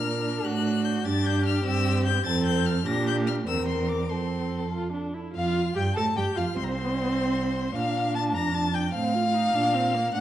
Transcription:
0.00 0.45 A#2 medium
0.00 1.03 D4 medium
0.00 0.47 A#4 medium
0.00 0.46 F6 loud
0.45 1.05 A2 medium
0.45 1.07 F#4 medium
0.45 0.86 F#6 loud
0.85 1.07 G6 loud
1.05 1.64 G2 loud
1.05 1.64 D4 loud
1.05 2.27 G4 loud
1.05 1.27 A6 loud
1.26 1.46 G6 loud
1.46 1.66 F6 loud
1.65 2.24 G2 loud
1.65 2.24 C4 loud
1.65 2.05 E6 loud
2.06 2.26 G6 loud
2.25 2.85 F2 loud
2.25 2.85 C4 loud
2.25 2.86 A4 medium
2.25 2.46 A6 loud
2.46 2.68 G6 loud
2.66 2.87 F6 loud
2.86 3.44 A#2 loud
2.86 3.43 D4 medium
2.86 3.44 G4 medium
2.86 3.06 A#6 loud
3.08 3.16 G6 loud
3.27 3.35 F6 loud
3.47 4.12 E2 medium
3.47 4.09 C4 medium
3.47 4.12 A#4 medium
3.47 3.68 E6 loud
3.69 3.91 C6 loud
3.89 4.11 D6 medium
4.09 5.15 F2 medium
4.09 4.67 C4 medium
4.09 5.15 A4 medium
4.09 4.72 C6 medium
4.73 4.92 F4 medium
4.93 5.15 D4 medium
5.14 5.34 E4 medium
5.34 5.73 F2 medium
5.34 5.73 F4 loud
5.34 5.73 F5 loud
5.34 5.78 F6 medium
5.75 5.96 G2 medium
5.75 5.83 G4 medium
5.75 5.96 G5 medium
5.75 5.96 G6 loud
5.96 6.05 A2 loud
5.96 6.04 A4 loud
5.96 6.16 A5 loud
5.96 6.05 A6 loud
6.16 6.24 G2 medium
6.16 6.37 G4 loud
6.16 6.25 G5 medium
6.16 6.39 G6 medium
6.36 6.44 F2 medium
6.36 6.58 F4 medium
6.36 6.45 F5 loud
6.36 6.57 F6 loud
6.56 7.73 C2 medium
6.56 7.75 C4 loud
6.56 7.73 C5 loud
6.56 6.66 C6 loud
6.64 6.72 A#5 medium
6.71 7.77 C6 loud
7.76 8.36 A#2 medium
7.76 8.91 D4 medium
7.76 8.16 F5 loud
7.76 8.15 F6 loud
8.15 8.36 A5 loud
8.15 8.23 A6 loud
8.34 8.95 F2 medium
8.34 8.56 A#5 loud
8.34 8.56 A#6 loud
8.54 8.76 A5 loud
8.54 8.76 A6 loud
8.74 8.94 G5 loud
8.74 8.93 G6 loud
8.94 9.53 A2 medium
8.94 9.16 C4 medium
8.94 10.12 F5 loud
8.94 10.12 F6 loud
9.14 9.35 F4 medium
9.34 9.56 D#4 medium
9.54 10.13 A#2 medium
9.54 9.76 D4 loud
9.74 9.96 C4 loud
9.94 10.14 A#3 loud
10.14 10.21 A2 medium
10.14 10.21 D4 loud
10.14 10.21 F#5 loud
10.14 10.21 F#6 loud

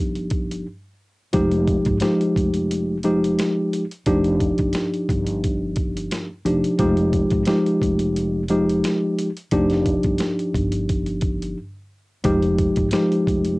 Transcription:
0.00 0.62 G1 medium
0.00 0.66 F3 medium
0.00 0.66 D4 medium
0.00 0.66 D#4 medium
0.00 0.66 G4 loud
0.15 closed hi-hat soft
0.30 kick loud
0.30 closed hi-hat medium
0.51 closed hi-hat medium
1.33 1.75 F1 loud
1.33 1.97 F3 medium
1.33 1.97 G#3 medium
1.33 1.97 D#4 medium
1.33 1.97 G4 loud
1.33 kick loud
1.33 closed hi-hat loud
1.52 closed hi-hat soft
1.68 kick medium
1.68 closed hi-hat medium
1.85 1.99 G#1 medium
1.85 kick medium
1.85 closed hi-hat soft
2.00 2.96 F3 medium
2.00 2.97 G#3 medium
2.00 2.97 D#4 medium
2.00 2.97 G4 medium
2.00 snare loud
2.00 snare medium
2.00 closed hi-hat loud
2.21 closed hi-hat soft
2.36 3.35 F1 medium
2.36 kick medium
2.36 closed hi-hat medium
2.54 closed hi-hat medium
2.71 closed hi-hat medium
3.03 3.83 F3 medium
3.03 3.84 G#3 medium
3.03 3.84 D#4 medium
3.03 3.84 G4 loud
3.03 closed hi-hat medium
3.24 closed hi-hat medium
3.39 snare loud
3.39 snare medium
3.39 closed hi-hat loud
3.73 closed hi-hat medium
3.91 closed hi-hat soft
4.06 4.48 F1 loud
4.06 6.27 F3 medium
4.06 6.27 D4 medium
4.06 6.28 D#4 medium
4.06 6.28 G4 loud
4.06 kick loud
4.06 closed hi-hat medium
4.24 closed hi-hat soft
4.40 kick medium
4.40 closed hi-hat medium
4.58 4.71 G1 medium
4.58 kick medium
4.58 closed hi-hat medium
4.73 snare loud
4.73 snare medium
4.73 closed hi-hat loud
4.94 closed hi-hat soft
5.09 6.07 G1 medium
5.09 kick medium
5.09 closed hi-hat medium
5.27 closed hi-hat medium
5.44 kick medium
5.44 closed hi-hat medium
5.76 kick medium
5.76 closed hi-hat medium
5.97 closed hi-hat medium
6.11 snare loud
6.11 closed hi-hat loud
6.45 6.60 F1 medium
6.45 6.77 F3 medium
6.45 6.77 D4 medium
6.45 6.77 D#4 medium
6.45 6.77 G4 medium
6.45 closed hi-hat medium
6.64 closed hi-hat soft
6.78 7.21 F1 loud
6.78 7.42 F3 loud
6.78 7.42 G#3 medium
6.78 7.42 D#4 medium
6.78 7.43 G4 loud
6.78 kick loud
6.78 closed hi-hat medium
6.97 closed hi-hat soft
7.13 kick medium
7.13 closed hi-hat medium
7.31 7.44 G#1 medium
7.31 kick medium
7.31 closed hi-hat medium
7.46 8.42 F3 medium
7.46 8.42 G#3 medium
7.46 8.42 D#4 medium
7.46 8.42 G4 loud
7.46 snare loud
7.46 snare medium
7.46 closed hi-hat medium
7.66 closed hi-hat soft
7.82 8.80 F1 medium
7.82 kick medium
7.82 closed hi-hat medium
7.99 closed hi-hat medium
8.16 closed hi-hat medium
8.48 9.29 F3 medium
8.48 9.29 G#3 medium
8.48 9.29 D#4 medium
8.48 9.29 G4 loud
8.48 closed hi-hat medium
8.70 closed hi-hat medium
8.84 snare loud
8.84 snare medium
8.84 closed hi-hat loud
9.19 closed hi-hat medium
9.37 closed hi-hat soft
9.51 9.94 F1 loud
9.51 11.56 F3 medium
9.51 11.57 D4 medium
9.51 11.57 D#4 medium
9.51 11.57 G4 loud
9.51 kick loud
9.51 closed hi-hat loud
9.70 snare soft
9.70 closed hi-hat soft
9.86 kick medium
9.86 closed hi-hat medium
10.03 10.17 G1 medium
10.03 kick medium
10.03 closed hi-hat soft
10.18 snare loud
10.18 snare medium
10.18 closed hi-hat loud
10.39 closed hi-hat soft
10.54 11.53 G1 medium
10.54 kick medium
10.54 closed hi-hat medium
10.72 closed hi-hat medium
10.89 kick medium
10.89 closed hi-hat medium
11.06 closed hi-hat soft
11.21 kick loud
11.21 closed hi-hat medium
11.42 closed hi-hat medium
12.24 12.66 F1 loud
12.24 12.88 F3 loud
12.24 12.88 G#3 medium
12.24 12.88 D#4 medium
12.24 12.88 G4 loud
12.24 kick loud
12.24 closed hi-hat medium
12.42 closed hi-hat soft
12.58 kick medium
12.58 closed hi-hat medium
12.76 12.89 G#1 medium
12.76 kick medium
12.76 closed hi-hat medium
12.91 13.59 F3 medium
12.91 13.59 G#3 medium
12.91 13.59 D#4 medium
12.91 13.59 G4 loud
12.91 snare loud
12.91 snare medium
12.91 closed hi-hat loud
13.12 closed hi-hat soft
13.27 13.59 F1 medium
13.27 kick medium
13.27 closed hi-hat medium
13.45 closed hi-hat medium

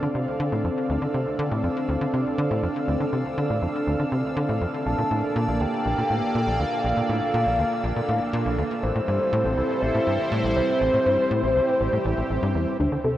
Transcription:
0.00 0.08 D3 medium
0.00 12.81 E3 medium
0.00 4.82 C4 medium
0.00 8.79 D4 medium
0.00 8.79 A4 medium
0.00 4.82 D5 medium
0.00 8.79 F5 medium
0.00 12.81 E6 medium
0.15 0.27 C3 medium
0.40 0.52 D3 medium
0.52 0.64 A2 medium
0.65 0.70 F2 medium
0.90 0.98 D2 medium
1.02 1.07 D3 medium
1.14 1.26 C3 medium
1.39 1.51 D3 loud
1.52 1.63 A2 medium
1.64 1.69 F2 medium
1.89 1.98 D2 medium
2.01 2.07 D3 medium
2.14 2.25 C3 medium
2.38 2.50 D3 medium
2.51 2.63 A2 medium
2.63 2.68 F2 medium
2.88 2.97 D2 medium
3.00 3.06 D3 medium
3.13 3.25 C3 medium
3.38 3.49 D3 medium
3.50 3.62 A2 medium
3.62 3.68 F2 medium
3.87 3.96 D2 medium
4.00 4.05 D3 medium
4.12 4.24 C3 medium
4.37 4.48 D3 medium
4.49 4.61 A2 medium
4.61 4.67 F2 medium
4.86 4.95 A#1 medium
4.86 8.79 A#3 medium
4.86 8.79 D5 medium
4.86 5.32 A5 loud
4.98 5.04 A#2 medium
5.11 5.23 A2 medium
5.36 5.48 A#2 loud
5.48 5.60 A#1 medium
5.61 5.66 D2 medium
5.61 6.61 G5 loud
5.85 5.94 A#1 medium
5.98 6.03 A#2 medium
6.10 6.22 A2 medium
6.35 6.47 A#2 medium
6.47 6.59 A#1 medium
6.60 6.65 D2 medium
6.60 8.58 F5 loud
6.85 6.93 A#1 medium
6.97 7.02 A#2 medium
7.10 7.21 A2 medium
7.34 7.46 A#2 loud
7.47 7.58 A#1 medium
7.59 7.64 D2 medium
7.84 7.93 A#1 medium
7.96 8.02 A#2 medium
8.09 8.20 A2 medium
8.33 8.45 A#2 loud
8.46 8.58 A#1 medium
8.58 8.64 D2 medium
8.83 8.92 A1 medium
8.83 12.76 G3 medium
8.83 12.76 C4 medium
8.83 12.76 E4 medium
8.83 10.79 A4 medium
8.83 9.84 C5 medium
8.83 12.76 C5 medium
8.95 9.01 A2 medium
9.08 9.20 G2 medium
9.33 9.44 A2 loud
9.45 9.57 A1 medium
9.57 9.63 C2 medium
9.82 9.91 A1 medium
9.82 10.32 E5 loud
9.95 10.00 A2 medium
10.07 10.19 G2 medium
10.32 10.44 A2 loud
10.44 10.56 A1 medium
10.57 10.62 C2 medium
10.57 12.51 C5 loud
10.81 10.90 A1 medium
10.81 12.78 G4 medium
10.94 10.99 A2 medium
11.06 11.18 G2 medium
11.31 11.43 A2 medium
11.43 11.55 A1 medium
11.56 11.61 C2 medium
11.81 11.90 A1 medium
11.93 11.98 A2 medium
12.05 12.14 A1 loud
12.18 12.23 A1 medium
12.30 12.39 A1 medium
12.43 12.54 G2 loud
12.55 12.67 E2 medium
12.80 13.18 D2 medium
12.80 12.89 D2 medium
12.80 13.18 C4 medium
12.80 13.18 D4 medium
12.80 12.86 D4 medium
12.80 13.18 D4 medium
12.80 13.18 F4 medium
12.80 13.18 A4 medium
12.80 13.18 D5 medium
12.92 12.97 D3 medium
13.04 13.16 C3 medium
13.04 13.14 A4 medium

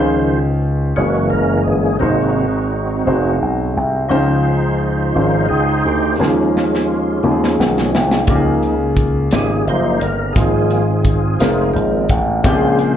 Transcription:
0.00 0.92 C#2 medium
0.00 0.93 C#3 medium
0.00 0.39 D#3 soft
0.00 0.39 F3 soft
0.00 0.81 C#4 medium
0.00 0.81 D#4 medium
0.00 0.82 F4 medium
0.00 0.82 G#4 medium
0.00 0.39 C5 medium
0.00 0.85 C5 medium
0.96 1.29 F#1 medium
0.96 1.97 E3 soft
0.96 1.97 G#3 soft
0.96 1.97 A#3 medium
0.96 1.97 C#4 medium
0.96 1.86 C#4 medium
0.96 1.87 E4 medium
0.96 1.29 F#4 medium
0.96 1.86 F#4 medium
0.96 1.87 G#4 medium
0.96 1.87 A#4 medium
1.30 1.64 F#1 medium
1.30 1.63 A#4 medium
1.63 1.98 G1 medium
1.63 1.97 G#4 medium
1.99 3.02 G#1 medium
1.99 3.02 G#2 medium
1.99 2.47 C3 soft
1.99 2.47 F#3 soft
1.99 2.47 A#3 soft
1.99 3.36 C4 soft
1.99 2.91 C4 medium
1.99 3.36 D#4 soft
1.99 2.91 D#4 medium
1.99 3.36 F#4 medium
1.99 2.91 F#4 medium
1.99 2.91 G#4 medium
1.99 2.91 C5 medium
3.06 3.38 F1 medium
3.06 3.95 C4 medium
3.06 3.95 D#4 medium
3.06 3.96 F#4 medium
3.06 3.96 G#4 medium
3.06 3.96 C5 medium
3.42 3.73 B1 medium
3.76 4.08 C2 medium
4.09 5.11 C#2 medium
4.09 5.11 C#3 medium
4.09 5.15 F3 soft
4.09 4.99 C#4 medium
4.09 6.14 D#4 soft
4.09 4.99 D#4 medium
4.09 5.00 F4 medium
4.09 5.00 G#4 medium
4.09 6.15 C5 soft
4.09 5.00 C5 medium
5.15 5.47 G#1 medium
5.15 5.47 D#3 soft
5.15 5.47 F3 soft
5.15 6.04 C#4 medium
5.15 5.48 C#4 soft
5.15 6.04 D#4 medium
5.15 5.47 F4 medium
5.15 6.04 F4 medium
5.15 6.05 G#4 medium
5.15 6.05 C5 medium
5.49 5.82 C#2 medium
5.49 5.85 G#4 medium
5.84 6.17 D2 medium
5.84 6.17 G4 medium
6.19 7.20 D#2 medium
6.19 7.20 D#3 medium
6.19 7.21 F3 soft
6.19 7.23 G#3 soft
6.19 7.09 A#3 medium
6.19 7.08 C#4 medium
6.19 7.20 C#4 medium
6.19 7.09 D#4 medium
6.19 7.55 F4 medium
6.19 7.09 G#4 medium
6.19 7.09 A#4 medium
6.19 snare medium
6.57 snare medium
6.75 snare medium
7.23 7.55 D#2 medium
7.23 8.24 D#3 medium
7.23 8.24 F3 soft
7.23 8.24 G#3 soft
7.23 8.13 A#3 medium
7.23 8.13 C#4 medium
7.23 8.24 C#4 medium
7.23 8.13 D#4 medium
7.23 8.13 F4 medium
7.23 7.30 G4 medium
7.31 8.17 G#4 medium
7.44 snare medium
7.59 7.91 B1 medium
7.59 snare medium
7.78 snare medium
7.94 8.26 C2 medium
7.94 snare medium
8.11 snare medium
8.27 9.28 C#2 medium
8.27 9.28 C#3 medium
8.27 8.75 F3 soft
8.27 9.17 A#3 medium
8.27 8.75 A#3 soft
8.27 9.17 C#4 medium
8.27 9.18 D#4 medium
8.27 8.75 D#4 soft
8.27 9.17 F4 medium
8.27 8.35 G4 medium
8.27 kick loud
8.27 closed hi-hat medium
8.27 tambourine soft
8.36 9.21 G#4 medium
8.62 closed hi-hat soft
8.62 tambourine soft
8.97 kick medium
8.97 closed hi-hat medium
9.31 9.64 G#1 medium
9.31 10.22 A#3 medium
9.31 10.22 C#4 medium
9.31 10.22 D#4 medium
9.31 10.22 F4 medium
9.31 10.23 G4 medium
9.31 9.65 G#4 medium
9.31 snare medium
9.31 closed hi-hat medium
9.31 tambourine medium
9.67 9.99 F#1 medium
9.67 10.00 F3 soft
9.67 10.00 A#3 soft
9.67 10.00 D#4 soft
9.67 10.04 C5 medium
9.67 closed hi-hat soft
9.99 10.33 G1 medium
9.99 10.36 A#4 medium
9.99 closed hi-hat medium
9.99 tambourine soft
10.33 11.36 G#1 medium
10.33 11.37 G#2 medium
10.33 10.82 F3 soft
10.33 11.25 G#3 medium
10.33 10.82 A#3 soft
10.33 11.71 C4 medium
10.33 11.25 C4 medium
10.33 11.25 D#4 medium
10.33 11.26 F4 medium
10.33 11.69 G#4 medium
10.33 kick loud
10.33 closed hi-hat medium
10.33 tambourine soft
10.37 11.71 F4 soft
10.37 11.26 G#4 medium
10.70 closed hi-hat soft
10.70 tambourine soft
11.05 kick medium
11.05 closed hi-hat medium
11.39 11.72 F1 medium
11.39 12.29 G#3 medium
11.39 12.29 C4 medium
11.39 12.29 D#4 medium
11.39 12.29 F4 medium
11.39 12.30 A#4 medium
11.39 snare medium
11.39 closed hi-hat medium
11.39 tambourine medium
11.74 12.07 G#1 medium
11.74 12.06 F3 soft
11.74 12.06 A#3 soft
11.74 12.05 C4 soft
11.74 closed hi-hat soft
12.09 12.42 A1 medium
12.09 kick medium
12.09 closed hi-hat medium
12.09 tambourine soft
12.43 12.97 A#1 medium
12.43 12.97 A#2 medium
12.43 12.97 C#3 soft
12.43 12.97 G#3 soft
12.43 12.97 A#3 medium
12.43 12.97 C4 medium
12.43 12.97 C#4 medium
12.43 12.97 F4 medium
12.43 12.52 G4 medium
12.43 12.97 C5 medium
12.43 kick loud
12.43 closed hi-hat medium
12.43 tambourine medium
12.52 12.97 G#4 medium
12.79 closed hi-hat soft
12.79 tambourine soft

